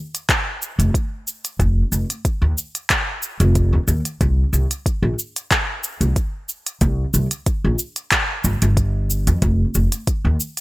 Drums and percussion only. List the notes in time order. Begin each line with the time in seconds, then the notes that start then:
0.15 closed hi-hat, cabasa
0.29 kick, clap, closed hi-hat, cabasa
0.62 cabasa
0.80 closed hi-hat, cabasa
0.94 kick, closed hi-hat, cabasa
1.28 cabasa
1.45 closed hi-hat, cabasa
1.60 kick, closed hi-hat, cabasa
1.92 cabasa
2.10 closed hi-hat, cabasa
2.25 kick, closed hi-hat, cabasa
2.58 cabasa
2.75 closed hi-hat, cabasa
2.90 kick, clap, closed hi-hat, cabasa
3.23 cabasa
3.40 closed hi-hat, cabasa
3.55 kick, closed hi-hat, cabasa
3.88 cabasa
4.05 closed hi-hat, cabasa
4.21 kick, closed hi-hat, cabasa
4.54 cabasa
4.71 closed hi-hat, cabasa
4.86 kick, closed hi-hat, cabasa
5.19 cabasa
5.36 closed hi-hat, cabasa
5.51 kick, clap, closed hi-hat, cabasa
5.84 cabasa
6.01 closed hi-hat, cabasa
6.16 kick, closed hi-hat, cabasa
6.49 cabasa
6.67 closed hi-hat, cabasa
6.81 kick, closed hi-hat, cabasa
7.14 cabasa
7.31 closed hi-hat, cabasa
7.46 kick, closed hi-hat, cabasa
7.79 cabasa
7.96 closed hi-hat, cabasa
8.11 kick, clap, closed hi-hat, cabasa
8.44 cabasa
8.62 closed hi-hat, cabasa
8.77 kick, closed hi-hat, cabasa
9.10 cabasa
9.27 closed hi-hat, cabasa
9.42 kick, closed hi-hat, cabasa
9.75 cabasa
9.92 closed hi-hat, cabasa
10.07 kick, closed hi-hat, cabasa
10.40 cabasa
10.57 closed hi-hat